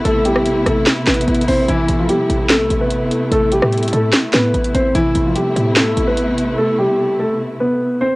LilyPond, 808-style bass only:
\new Staff \with { instrumentName = "808-style bass" } { \clef bass \time 4/4 \key a \minor \tempo 4 = 147 a,,4. a,,8 r8 a,,8 a,,8 a,,8 | a,,8 a,,8 r8 a,,8. c,16 a,,8. g,,16 r8 | a,,8. a,8. a,8 r8 a,8 a,,8 a,,8 | a,,8 a,,8 r8 a,4 a,,4. |
r1 | }